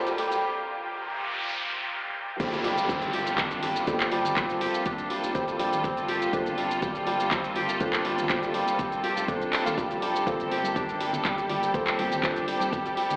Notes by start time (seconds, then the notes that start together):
Already playing: C3 G3 A#3 C4 D4 F4 G4 A4 C5, riser
0.07 G3, closed hi-hat, mid tom, shaker
0.18 G3, open hi-hat, mid tom
0.31 closed hi-hat, mid tom, shaker
0.43 noise sweep
2.40 G1 C3 G3 A#3 F4 A4 C5, kick, closed hi-hat, downlifter, shaker
2.53 G3, closed hi-hat, shaker
2.64 G3, open hi-hat
2.78 shaker
2.89 C4, kick, closed hi-hat, shaker
3.02 closed hi-hat, shaker
3.13 G4, open hi-hat
3.27 shaker
3.38 D4, kick, clap, closed hi-hat, shaker
3.51 closed hi-hat, shaker
3.63 G3, open hi-hat, mid tom
3.76 shaker
3.87 G3 A#3 F4 A4 C5, kick, closed hi-hat, shaker
4.00 G3, clap, closed hi-hat, shaker
4.12 G1 G3, open hi-hat
4.25 closed hi-hat, mid tom, shaker
4.36 A#3 C4 F4 A4 C5, kick, clap, closed hi-hat, shaker
4.50 closed hi-hat, shaker
4.61 G4, open hi-hat
4.74 shaker
4.86 D4, kick, closed hi-hat, shaker
4.98 closed hi-hat, shaker
5.10 G3, open hi-hat
5.23 F1, shaker
5.35 G3 A#3 F4 A4 C5, kick, closed hi-hat, shaker
5.48 G3, closed hi-hat, shaker
5.59 A#1 G3, open hi-hat
5.73 mid tom, shaker
5.84 G1 C4, kick, closed hi-hat, shaker
5.97 closed hi-hat, shaker
6.08 G4, open hi-hat
6.22 closed hi-hat, shaker
6.33 G1 A#3 D4 F4 A4 C5, kick, closed hi-hat, shaker
6.46 closed hi-hat, shaker
6.58 G3, open hi-hat
6.71 shaker
6.82 G3, kick, closed hi-hat, shaker
6.95 G3, closed hi-hat, shaker
7.07 G3, open hi-hat
7.20 shaker
7.31 C4, kick, clap, closed hi-hat, shaker
7.44 closed hi-hat, shaker
7.56 G4, open hi-hat, mid tom
7.69 shaker
7.80 A#3 D4 F4 A4 C5, kick, closed hi-hat, shaker
7.93 clap, closed hi-hat, shaker
8.05 G1 G3, open hi-hat
8.18 closed hi-hat, mid tom, shaker
8.30 G3 A#3 F4 A4 C5, kick, clap, closed hi-hat, shaker
8.43 G3, closed hi-hat, shaker
8.54 G3, open hi-hat
8.68 shaker
8.79 C4, kick, closed hi-hat, shaker
8.92 closed hi-hat, shaker
9.04 G4, open hi-hat
9.17 F1, shaker
9.28 A#3 D4 F4 A4 C5, kick, closed hi-hat, shaker
9.41 closed hi-hat, shaker
9.53 G3, clap, open hi-hat
9.66 F1 A#3 F4 A4 F5, closed hi-hat, mid tom, shaker
9.78 G3, kick, closed hi-hat, shaker
9.91 G3, closed hi-hat, shaker
10.02 G3, open hi-hat
10.15 closed hi-hat, shaker
10.26 G1 A#3 C4 F4 G4 A4 C5, kick, closed hi-hat, high conga, shaker
10.40 closed hi-hat, shaker
10.51 G4, open hi-hat
10.64 high conga, shaker
10.76 D4, kick, closed hi-hat, shaker
10.89 closed hi-hat, shaker
11.01 G3, open hi-hat
11.13 low conga, shaker
11.25 G3, kick, clap, closed hi-hat, high conga, shaker
11.38 G3, closed hi-hat, shaker
11.50 G3, open hi-hat, mid tom
11.63 shaker
11.74 A#3 C4 F4 A4 C5, kick, closed hi-hat, low conga, shaker
11.87 clap, closed hi-hat, shaker
11.99 G1 G4, open hi-hat, high conga
12.12 closed hi-hat, mid tom, shaker
12.23 A#3 D4 F4 A4 C5, kick, clap, closed hi-hat, shaker
12.36 closed hi-hat, shaker
12.48 G3, open hi-hat
12.60 high conga, shaker
12.73 G3, kick, closed hi-hat, shaker
12.85 G3, closed hi-hat, shaker
12.97 G3, open hi-hat
13.10 F1, low conga, shaker